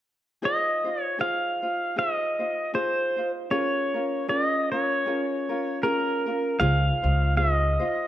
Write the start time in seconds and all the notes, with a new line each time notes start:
0.42 D#4 F4 G#4 C5 D#5
0.84 D#4 F4 C5
1.02 C#5
1.18 D#4 F4 G#4 C5 F5
1.62 D#4 F4 C5
1.96 D#4 F4 G#4 C5 D#5
2.39 D#4 F4 C5
2.74 D#4 F4 G#4 C5
3.17 D#4 F4 C5
3.51 C#4 F4 G#4 A#4 C#5
3.94 C#4 F4 A#4
4.28 C#4 F4 G#4 A#4 D5
4.46 D#5
4.72 C#4 F4 A#4 C#5
5.06 C#4 F4 G#4 A#4
5.49 C#4 F4 A#4
5.83 C#4 F4 G#4 A#4
6.26 C#4 F4 A#4
6.59 C#2 D#4 F4 G#4 C5 F5
7.02 C#2 D#4 F4 C5
7.36 D#4 F4 G#4 C5 D#5
7.80 D#4 F4 C5